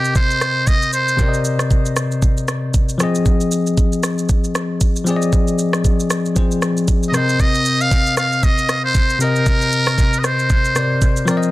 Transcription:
0.00 1.14 C3 medium
0.00 1.15 C4 medium
0.00 0.14 G4 medium
0.00 1.16 A#4 medium
0.00 1.17 D#5 medium
0.05 shaker soft
0.15 0.69 C5 loud
0.15 kick loud
0.15 shaker medium
0.30 shaker medium
0.41 cross-stick medium
0.41 shaker medium
0.67 0.93 D#5 loud
0.67 kick loud
0.67 shaker medium
0.82 shaker medium
0.93 1.41 C5 loud
0.93 shaker medium
1.08 shaker medium
1.17 2.95 C3 medium
1.17 2.96 C4 medium
1.17 2.97 A#4 medium
1.17 kick loud
1.17 shaker medium
1.22 1.28 D5 medium
1.29 3.01 D#5 medium
1.34 shaker medium
1.45 shaker medium
1.59 cross-stick medium
1.59 shaker medium
1.71 kick medium
1.71 shaker medium
1.86 shaker medium
1.96 cross-stick medium
1.96 shaker medium
2.11 shaker soft
2.22 kick loud
2.22 shaker medium
2.37 shaker medium
2.48 cross-stick medium
2.48 shaker medium
2.74 kick loud
2.74 shaker medium
2.89 shaker medium
2.98 5.02 F3 medium
2.98 5.03 C4 medium
2.98 5.04 G#4 medium
2.98 cross-stick medium
2.98 shaker medium
3.03 5.05 D#5 medium
3.15 shaker medium
3.26 kick loud
3.26 shaker medium
3.41 shaker medium
3.52 shaker medium
3.67 shaker medium
3.77 kick medium
3.77 shaker medium
3.93 shaker soft
4.03 cross-stick medium
4.03 shaker medium
4.18 shaker soft
4.29 kick loud
4.29 shaker medium
4.44 shaker medium
4.55 cross-stick medium
4.55 shaker medium
4.81 kick loud
4.81 shaker medium
4.96 shaker medium
5.05 6.32 F3 medium
5.05 6.33 C4 medium
5.05 6.34 G#4 medium
5.05 shaker medium
5.10 5.16 D5 medium
5.17 6.39 D#5 medium
5.22 shaker medium
5.33 kick loud
5.33 shaker medium
5.48 shaker medium
5.59 shaker medium
5.73 cross-stick medium
5.73 shaker medium
5.85 kick medium
5.85 shaker medium
6.00 shaker medium
6.10 cross-stick medium
6.10 shaker medium
6.25 shaker soft
6.35 7.13 F3 medium
6.35 7.12 C4 medium
6.35 7.14 G#4 medium
6.35 7.15 C5 medium
6.35 kick loud
6.35 shaker medium
6.51 shaker medium
6.62 cross-stick medium
6.62 shaker medium
6.77 shaker medium
6.88 kick loud
6.88 shaker medium
7.03 shaker medium
7.09 9.16 C3 medium
7.09 7.16 D#5 medium
7.14 9.17 C4 medium
7.14 9.18 A#4 medium
7.14 7.42 C5 medium
7.14 9.18 D#5 medium
7.14 cross-stick medium
7.14 shaker medium
7.29 shaker medium
7.40 7.83 D#5 loud
7.40 kick loud
7.40 shaker medium
7.55 shaker medium
7.66 shaker medium
7.81 8.17 F5 loud
7.81 shaker medium
7.91 kick medium
7.91 shaker medium
8.06 shaker soft
8.17 8.45 F5 loud
8.17 cross-stick loud
8.17 shaker loud
8.32 shaker soft
8.43 8.84 D#5 loud
8.43 kick loud
8.43 shaker medium
8.58 shaker medium
8.69 cross-stick medium
8.69 shaker medium
8.85 9.18 C5 loud
8.95 kick loud
8.95 shaker medium
9.10 shaker medium
9.19 10.72 C3 medium
9.19 10.73 C4 medium
9.19 10.20 A#4 loud
9.19 10.74 A#4 medium
9.19 shaker medium
9.24 10.74 D#5 medium
9.36 shaker medium
9.46 kick loud
9.46 shaker medium
9.61 shaker medium
9.72 shaker medium
9.87 cross-stick loud
9.87 shaker medium
9.98 kick medium
9.98 shaker medium
10.13 shaker medium
10.19 10.26 D#5 medium
10.24 11.28 C5 medium
10.24 cross-stick medium
10.24 shaker loud
10.39 shaker soft
10.50 kick loud
10.50 shaker medium
10.65 shaker medium
10.75 11.27 C3 soft
10.75 11.26 C4 soft
10.75 11.28 A#4 soft
10.75 11.29 D5 medium
10.75 cross-stick medium
10.75 shaker medium
11.02 kick loud
11.02 shaker medium
11.17 shaker medium
11.25 11.51 F3 medium
11.25 11.51 C4 medium
11.25 11.51 A#4 medium
11.25 cross-stick medium
11.25 shaker medium
11.31 11.36 D5 medium
11.37 11.51 D#5 medium
11.43 shaker medium

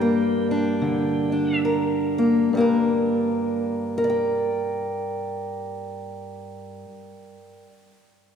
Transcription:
0.00 2.52 G2 medium
0.00 2.48 G3 medium
0.00 2.17 A#3 soft
0.00 0.50 D4 medium
0.00 1.64 A#4 medium
0.00 1.59 G5 medium
0.51 1.31 D4 medium
0.82 2.48 D3 medium
1.32 2.57 D4 soft
1.65 2.48 A#4 medium
2.18 2.56 A#3 medium
2.53 6.84 G2 medium
2.53 6.86 G3 soft
2.57 3.97 A#3 soft
2.57 4.04 D4 soft
2.57 3.98 A#4 medium
3.98 7.63 A#4 medium
4.04 7.66 D5 medium
4.10 7.69 G5 medium

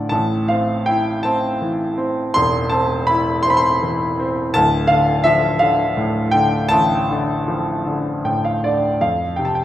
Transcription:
0.00 0.12 A2 soft
0.00 0.14 D3 medium
0.00 0.14 F3 soft
0.00 0.14 D5 medium
0.09 2.32 A1 soft
0.09 2.32 A2 medium
0.09 0.50 A5 medium
0.48 1.23 C4 soft
0.48 0.88 F5 medium
0.86 2.32 E4 soft
0.86 1.25 G5 medium
1.23 1.96 C4 medium
1.23 2.38 A5 medium
1.61 3.06 E3 soft
1.98 2.70 C4 medium
2.34 4.51 E1 medium
2.34 4.51 E2 medium
2.34 2.73 C6 loud
2.70 3.44 C4 medium
2.70 3.09 A5 medium
3.07 4.51 E4 medium
3.07 3.43 B5 medium
3.43 4.18 C4 medium
3.43 3.52 C6 medium
3.50 3.59 B5 medium
3.57 4.56 C6 medium
3.83 4.53 E3 soft
4.19 4.54 C4 medium
4.54 6.67 D1 medium
4.54 6.67 D2 medium
4.54 4.91 A5 loud
4.87 5.59 D3 medium
4.87 5.21 F5 medium
5.24 6.67 F3 medium
5.24 5.61 E5 medium
5.59 6.32 D3 medium
5.59 6.35 F5 medium
5.97 7.45 A2 medium
6.31 7.08 D3 medium
6.31 6.71 G5 medium
6.69 8.97 A1 medium
6.69 8.20 A5 loud
7.10 7.84 D3 medium
7.48 8.97 F3 soft
7.86 8.63 D3 soft
8.25 8.99 A2 soft
8.25 8.43 G5 medium
8.45 8.62 F5 medium
8.64 9.01 D3 soft
8.64 8.99 D5 medium
9.01 9.64 F2 soft
9.01 9.36 F5 medium
9.36 9.64 C3 soft
9.36 9.46 G5 medium
9.45 9.54 A5 medium
9.55 9.63 G5 medium

